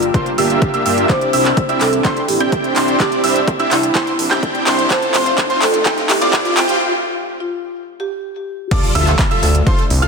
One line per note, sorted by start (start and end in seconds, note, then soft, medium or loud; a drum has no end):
0.00 0.10 G1 medium
0.00 1.06 G3 medium
0.00 1.06 D4 medium
0.00 1.05 F4 medium
0.00 1.08 G4 medium
0.00 1.06 A#4 medium
0.00 closed hi-hat soft
0.14 0.31 A#3 medium
0.14 0.31 D4 medium
0.14 0.31 F4 medium
0.14 0.31 G4 medium
0.14 0.31 C5 medium
0.14 0.31 C6 medium
0.14 kick loud
0.14 closed hi-hat medium
0.26 closed hi-hat soft
0.38 0.58 G1 loud
0.38 0.71 A#3 medium
0.38 0.71 D4 medium
0.38 0.71 F4 medium
0.38 0.71 G4 medium
0.38 1.05 G4 medium
0.38 0.71 E5 medium
0.38 0.71 E6 medium
0.38 open hi-hat loud
0.50 closed hi-hat soft
0.62 kick loud
0.62 closed hi-hat medium
0.74 0.83 A#3 medium
0.74 0.83 D4 medium
0.74 0.83 F4 medium
0.74 0.83 G4 medium
0.74 0.83 E5 loud
0.74 0.83 E6 loud
0.74 closed hi-hat soft
0.86 1.05 G2 medium
0.86 1.07 A#3 medium
0.86 1.07 D4 medium
0.86 1.07 F4 medium
0.86 1.07 G4 medium
0.86 1.07 E5 medium
0.86 1.07 E6 medium
0.86 open hi-hat medium
0.98 closed hi-hat soft
1.09 6.77 C4 medium
1.09 1.30 C4 medium
1.09 4.87 D4 medium
1.09 1.30 D4 medium
1.09 4.87 E4 medium
1.09 1.30 E4 medium
1.09 1.30 G4 medium
1.09 1.45 C5 medium
1.09 1.30 D5 medium
1.09 1.30 D6 medium
1.09 kick loud
1.09 clap soft
1.09 closed hi-hat medium
1.09 riser medium
1.21 closed hi-hat soft
1.33 1.53 C2 loud
1.33 1.50 C4 medium
1.33 1.50 D4 medium
1.33 1.50 E4 medium
1.33 1.50 G4 medium
1.33 1.50 E5 loud
1.33 1.50 E6 medium
1.33 open hi-hat loud
1.45 clap soft
1.45 closed hi-hat soft
1.57 kick loud
1.57 closed hi-hat medium
1.69 1.85 C4 medium
1.69 1.85 D4 medium
1.69 1.85 E4 medium
1.69 1.85 G4 medium
1.69 1.85 E5 medium
1.69 1.85 E6 medium
1.69 closed hi-hat soft
1.81 2.01 C2 medium
1.81 1.96 A4 medium
1.81 clap soft
1.81 open hi-hat medium
1.93 closed hi-hat soft
2.05 2.21 C4 medium
2.05 2.21 D4 medium
2.05 2.21 E4 medium
2.05 2.21 G4 medium
2.05 2.21 C5 medium
2.05 2.21 C6 medium
2.05 kick loud
2.05 clap medium
2.05 closed hi-hat medium
2.17 closed hi-hat soft
2.28 2.48 A#1 medium
2.28 2.36 G4 medium
2.28 open hi-hat loud
2.40 2.73 C4 medium
2.40 2.73 D4 medium
2.40 2.73 E4 medium
2.40 2.73 G4 medium
2.40 2.73 G5 medium
2.40 2.73 G6 medium
2.40 closed hi-hat soft
2.52 kick loud
2.52 closed hi-hat medium
2.64 closed hi-hat soft
2.76 2.96 C2 medium
2.76 2.96 C4 medium
2.76 2.96 D4 medium
2.76 2.96 E4 medium
2.76 2.96 G4 medium
2.76 2.96 C5 medium
2.76 2.96 C6 medium
2.76 clap medium
2.76 open hi-hat medium
2.88 closed hi-hat soft
3.00 3.21 C4 medium
3.00 3.21 D4 medium
3.00 3.21 E4 medium
3.00 3.21 G4 medium
3.00 3.15 G4 medium
3.00 3.21 D6 medium
3.00 kick loud
3.00 clap medium
3.00 closed hi-hat medium
3.12 closed hi-hat soft
3.24 3.44 C2 loud
3.24 3.40 C4 medium
3.24 3.40 D4 medium
3.24 3.40 E4 medium
3.24 3.40 G4 medium
3.24 3.40 E5 loud
3.24 3.40 E6 medium
3.24 open hi-hat loud
3.36 closed hi-hat soft
3.48 kick loud
3.48 closed hi-hat medium
3.59 3.76 C4 medium
3.59 3.76 D4 medium
3.59 3.76 E4 medium
3.59 3.76 G4 medium
3.59 3.76 E5 medium
3.59 3.76 E6 medium
3.59 closed hi-hat soft
3.71 3.91 C2 medium
3.71 4.07 E4 medium
3.71 clap medium
3.71 open hi-hat medium
3.83 closed hi-hat soft
3.95 4.11 C4 medium
3.95 4.11 D4 medium
3.95 4.11 E4 medium
3.95 4.11 G4 medium
3.95 4.11 C5 medium
3.95 4.11 C6 medium
3.95 kick loud
3.95 clap medium
3.95 closed hi-hat medium
4.07 closed hi-hat soft
4.19 4.39 A#1 medium
4.19 open hi-hat loud
4.31 4.64 C4 medium
4.31 4.64 D4 medium
4.31 4.64 E4 medium
4.31 4.64 G4 medium
4.31 4.64 G5 medium
4.31 4.64 G6 loud
4.31 clap medium
4.31 closed hi-hat soft
4.43 kick loud
4.43 closed hi-hat medium
4.55 closed hi-hat soft
4.67 4.86 C2 medium
4.67 4.87 C4 medium
4.67 4.87 D4 medium
4.67 4.87 E4 medium
4.67 4.87 G4 medium
4.67 4.87 C5 loud
4.67 4.87 C6 loud
4.67 clap medium
4.67 open hi-hat medium
4.79 closed hi-hat soft
4.90 6.79 A3 medium
4.90 5.11 C4 medium
4.90 6.79 F4 medium
4.90 5.11 F4 medium
4.90 5.11 A4 medium
4.90 5.26 C5 medium
4.90 5.11 A5 medium
4.90 kick loud
4.90 clap medium
4.90 closed hi-hat medium
5.02 closed hi-hat soft
5.14 5.34 F1 loud
5.14 5.31 C4 medium
5.14 5.31 F4 medium
5.14 5.31 C5 loud
5.14 5.30 C6 loud
5.14 clap medium
5.14 open hi-hat loud
5.26 closed hi-hat soft
5.38 kick loud
5.38 clap medium
5.38 closed hi-hat medium
5.50 5.66 C4 medium
5.50 5.66 F4 medium
5.50 5.66 C5 medium
5.50 5.66 C6 medium
5.50 closed hi-hat soft
5.62 5.82 F1 medium
5.62 5.77 A4 medium
5.62 clap medium
5.62 open hi-hat medium
5.74 closed hi-hat soft
5.86 6.02 C4 medium
5.86 6.02 F4 medium
5.86 6.02 G4 medium
5.86 6.02 G5 medium
5.86 kick loud
5.86 clap medium
5.86 closed hi-hat medium
5.98 closed hi-hat soft
6.09 6.29 C2 medium
6.09 6.24 G4 medium
6.09 clap medium
6.09 open hi-hat loud
6.21 6.54 C4 medium
6.21 6.54 F4 medium
6.21 6.54 D5 loud
6.21 6.54 D6 medium
6.21 closed hi-hat soft
6.33 kick loud
6.33 clap medium
6.33 closed hi-hat medium
6.45 6.53 F4 medium
6.45 closed hi-hat soft
6.57 6.77 F1 loud
6.57 6.77 C4 medium
6.57 6.65 F4 medium
6.57 6.77 F4 medium
6.57 6.77 G4 loud
6.57 6.77 G5 loud
6.57 clap medium
6.57 open hi-hat medium
6.69 closed hi-hat soft
7.40 7.55 F4 medium
8.00 8.67 G4 loud
8.71 10.08 A3 medium
8.71 10.08 D4 medium
8.71 10.08 F4 medium
8.71 8.92 F4 medium
8.71 8.92 A4 medium
8.71 8.92 D5 medium
8.71 8.92 D6 medium
8.71 kick loud
8.71 closed hi-hat medium
8.71 crash loud
8.71 impact medium
8.83 open hi-hat medium
8.95 9.15 D2 loud
8.95 9.11 F4 medium
8.95 9.11 A4 medium
8.95 9.11 E5 loud
8.95 9.11 E6 loud
8.95 open hi-hat loud
9.07 clap soft
9.07 closed hi-hat soft
9.19 kick loud
9.19 clap loud
9.19 closed hi-hat medium
9.31 9.47 F4 medium
9.31 9.47 A4 medium
9.31 9.47 E5 medium
9.31 9.47 E6 medium
9.31 closed hi-hat soft
9.43 9.63 D2 medium
9.43 open hi-hat loud
9.55 closed hi-hat soft
9.67 9.83 F4 medium
9.67 9.83 A4 medium
9.67 9.83 C5 medium
9.67 9.83 C6 medium
9.67 kick loud
9.67 closed hi-hat medium
9.79 closed hi-hat soft
9.90 10.08 C2 medium
9.90 open hi-hat loud
10.02 10.08 F4 medium
10.02 10.08 A4 medium
10.02 10.08 F5 loud
10.02 10.08 F6 medium
10.02 closed hi-hat soft